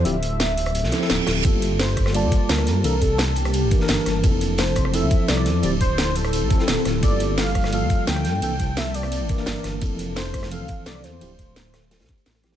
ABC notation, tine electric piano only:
X:1
M:4/4
L:1/16
Q:1/4=172
K:Gdor
V:1 name="Tine electric piano"
[F,CEG] z8 z [F,CEA] [F,CEA]4- [F,CEA] | [G,B,FA]8 [G,B,Fa]8 | [E,B,DA] z8 z [E,B,DB] [E,B,DB]4- [E,B,DB] | [F,CEA]8 [F,CEA]8 |
[F,CEG] z8 z [F,CEA] [F,CEA]4- [F,CEA] | [G,B,FA]8 [G,B,FA]8 | [E,B,DA] z8 z [E,B,DB] [E,B,DB]4- [E,B,DB] | [F,CEA]8 [E,F,CA]8 |
[F,CEG] z12 z [F,CEG]2 |]